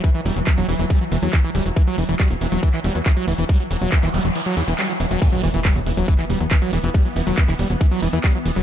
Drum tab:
CC |----------------|----------------|----------------|x---------------|
HH |x-oxxooxx-oxx-ox|x-oxxxoxx-oxx-ox|xxoxxooxx-oxxxox|x-oxxxoxx-oxx-ox|
CP |----xx------x---|----x----x--x---|----xx------x---|----x----x--x---|
BD |o---o---o---o---|o---o---o---o---|o---o-----------|o---o---o---o---|

CC |----------------|
HH |x-oxxooxx-oxx-ox|
CP |----xx------x---|
BD |o---o---o---o---|